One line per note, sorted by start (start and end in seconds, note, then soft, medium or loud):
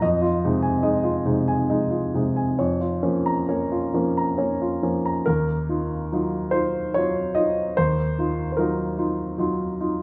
0.02 0.42 F2 medium
0.02 0.35 D#5 medium
0.21 0.55 F4 medium
0.45 0.77 C3 medium
0.45 0.82 G#3 medium
0.45 0.81 D#4 medium
0.62 0.97 G#5 medium
0.83 1.22 G#3 medium
0.83 1.22 D#4 medium
0.83 1.18 D#5 medium
1.03 1.39 F4 medium
1.25 1.60 C3 medium
1.25 1.65 G#3 soft
1.25 1.66 D#4 soft
1.48 1.83 G#5 medium
1.69 2.09 G#3 soft
1.69 2.10 D#4 soft
1.69 2.05 D#5 medium
1.90 2.26 F4 medium
2.14 2.50 C3 medium
2.14 2.55 G#3 soft
2.14 2.55 D#4 soft
2.36 2.59 G#5 soft
2.59 3.03 F2 medium
2.59 2.95 C#5 medium
2.81 3.17 F4 soft
3.03 3.40 F3 soft
3.03 3.45 A#3 soft
3.03 3.45 C#4 soft
3.26 3.63 A#5 medium
3.49 3.91 A#3 soft
3.49 3.91 C#4 soft
3.49 3.86 C#5 medium
3.72 4.09 F4 soft
3.94 4.31 F3 soft
3.94 4.36 A#3 soft
3.94 4.36 C#4 soft
4.17 4.53 A#5 soft
4.38 4.80 A#3 soft
4.38 4.80 C#4 soft
4.38 4.75 C#5 medium
4.61 4.97 F4 soft
4.82 5.18 F3 soft
4.82 5.23 A#3 soft
4.82 5.23 C#4 soft
5.06 5.27 A#5 soft
5.26 5.68 D#2 medium
5.26 6.52 A#4 medium
5.69 6.07 D#4 soft
5.69 6.07 F4 soft
6.12 6.49 F#3 soft
6.12 6.49 D#4 soft
6.12 6.50 F4 soft
6.51 6.90 D#4 soft
6.51 6.90 F4 soft
6.51 6.93 C5 medium
6.94 7.32 F#3 soft
6.94 7.32 D#4 soft
6.94 7.33 F4 soft
6.94 7.36 C#5 medium
7.35 7.73 D#4 soft
7.35 7.73 F4 soft
7.35 7.76 D#5 medium
7.77 8.17 D#2 medium
7.77 8.51 C5 medium
8.19 8.55 D#4 soft
8.19 8.55 F4 soft
8.52 8.59 C5 soft
8.57 8.95 F#3 soft
8.57 8.95 D#4 soft
8.57 8.95 F4 soft
8.57 9.78 A#4 medium
8.98 9.35 D#4 soft
8.98 9.35 F4 soft
9.38 9.75 F#3 soft
9.38 9.74 D#4 soft
9.38 9.75 F4 medium
9.80 10.03 D#4 soft
9.80 10.03 F4 soft